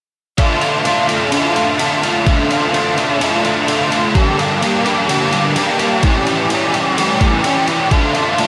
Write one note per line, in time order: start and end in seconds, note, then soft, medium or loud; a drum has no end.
0.38 0.84 D3 medium
0.38 0.64 A3 medium
0.38 0.63 D4 loud
0.38 0.61 F4 loud
0.38 kick loud
0.38 ride medium
0.61 0.86 A3 medium
0.61 0.86 D4 medium
0.61 0.87 F4 medium
0.61 ride medium
0.85 1.31 D3 medium
0.85 1.10 A3 medium
0.85 1.09 D4 medium
0.85 1.08 F4 medium
0.85 ride medium
1.08 1.31 A3 medium
1.08 1.33 D4 medium
1.08 1.34 F4 medium
1.08 ride medium
1.32 1.77 D3 medium
1.32 1.56 A3 medium
1.32 1.56 D4 medium
1.32 1.55 F4 medium
1.32 ride medium
1.55 1.78 A3 medium
1.55 1.79 D4 medium
1.55 1.80 F4 medium
1.55 ride medium
1.78 2.24 D3 medium
1.78 2.03 A3 medium
1.78 2.03 D4 medium
1.78 2.01 F4 medium
1.78 ride medium
2.02 2.25 A3 medium
2.02 2.26 D4 medium
2.02 2.27 F4 medium
2.02 ride medium
2.25 2.72 D3 loud
2.25 2.51 A3 loud
2.25 2.50 D4 loud
2.25 2.49 F4 medium
2.25 kick loud
2.25 ride medium
2.49 2.72 A3 medium
2.49 2.74 D4 medium
2.49 2.74 F4 medium
2.49 ride medium
2.73 3.18 D3 medium
2.73 2.97 A3 medium
2.73 2.97 D4 medium
2.73 2.96 F4 medium
2.73 ride medium
2.97 3.19 A3 medium
2.97 3.20 D4 medium
2.97 3.21 F4 medium
2.97 ride medium
3.20 3.66 D3 medium
3.20 3.45 A3 loud
3.20 3.44 D4 medium
3.20 3.43 F4 loud
3.20 ride medium
3.44 3.67 A3 medium
3.44 3.68 D4 medium
3.44 3.68 F4 medium
3.44 ride soft
3.67 4.13 D3 medium
3.67 3.91 A3 medium
3.67 3.90 D4 medium
3.67 3.89 F4 medium
3.67 ride medium
3.90 4.14 A3 medium
3.90 4.13 D4 medium
3.90 4.13 F4 medium
3.90 ride medium
4.14 4.62 G2 loud
4.14 4.62 D3 loud
4.14 4.40 G3 medium
4.14 4.38 A#3 loud
4.14 4.37 D4 loud
4.14 4.37 G4 loud
4.14 kick loud
4.14 ride medium
4.38 4.61 G3 medium
4.38 4.61 A#3 medium
4.38 4.61 D4 medium
4.38 4.63 G4 medium
4.38 ride medium
4.61 4.86 G3 medium
4.61 4.85 A#3 medium
4.61 4.84 D4 medium
4.61 4.84 G4 medium
4.61 ride medium
4.84 5.07 G3 medium
4.84 5.08 A#3 medium
4.84 5.08 D4 medium
4.84 5.09 G4 medium
4.84 ride medium
5.08 5.56 G2 medium
5.08 5.56 D3 medium
5.08 5.33 G3 medium
5.08 5.32 A#3 medium
5.08 5.32 D4 medium
5.08 5.31 G4 loud
5.08 ride medium
5.32 5.54 G3 medium
5.32 5.55 A#3 medium
5.32 5.56 D4 medium
5.32 5.56 G4 medium
5.32 ride medium
5.55 5.81 G3 medium
5.55 5.80 A#3 medium
5.55 5.79 D4 medium
5.55 5.78 G4 medium
5.55 ride medium
5.79 6.03 G3 medium
5.79 6.02 A#3 medium
5.79 6.02 D4 medium
5.79 6.02 G4 medium
5.79 ride medium
6.03 6.50 A2 medium
6.03 6.49 E3 medium
6.03 6.28 G3 loud
6.03 6.27 C#4 medium
6.03 6.26 G4 medium
6.03 kick loud
6.03 ride medium
6.27 6.50 G3 medium
6.27 6.51 C#4 medium
6.27 6.52 G4 medium
6.27 ride medium
6.50 6.97 E3 medium
6.50 6.74 G3 medium
6.50 6.73 C#4 medium
6.50 6.72 G4 medium
6.50 ride medium
6.73 6.97 G3 medium
6.73 6.98 C#4 medium
6.73 6.98 G4 medium
6.73 ride medium
6.97 7.44 A2 medium
6.97 7.44 E3 medium
6.97 7.21 G3 medium
6.97 7.20 C#4 medium
6.97 7.19 G4 loud
6.97 ride medium
7.21 7.44 G3 medium
7.21 7.45 C#4 medium
7.21 7.46 G4 medium
7.21 kick medium
7.21 ride medium
7.44 7.90 E3 medium
7.44 7.69 G3 medium
7.44 7.68 C#4 medium
7.44 7.67 G4 medium
7.44 ride medium
7.68 7.91 G3 medium
7.68 7.91 C#4 medium
7.68 7.90 G4 medium
7.68 ride medium
7.90 8.38 D3 medium
7.90 8.16 A3 medium
7.90 8.15 D4 loud
7.90 8.14 F4 loud
7.90 kick loud
7.90 ride medium
8.14 8.38 A3 medium
8.14 8.39 D4 medium
8.14 8.40 F4 medium
8.14 ride medium
8.38 8.47 D3 medium
8.38 8.47 A3 medium
8.38 8.47 D4 medium
8.38 8.47 F4 medium
8.38 ride medium